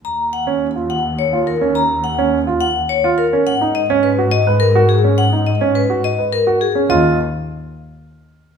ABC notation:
X:1
M:3/4
L:1/16
Q:1/4=105
K:Ebm
V:1 name="Vibraphone"
b z g z3 g z d z B z | b z g z3 g z d z B z | g z e z c z e z B z A z | g z e z c z e z B z A z |
e2 z8 z2 |]
V:2 name="Grand piano"
z3 D z F z3 F z D | z3 D z F z3 F z D | z E z D z G z c z G z D | z E z D z G z c z G z D |
F2 z8 z2 |]
V:3 name="Double bass section" clef=bass
E,,12- | E,,12 | A,,12- | A,,12 |
E,,2 z8 z2 |]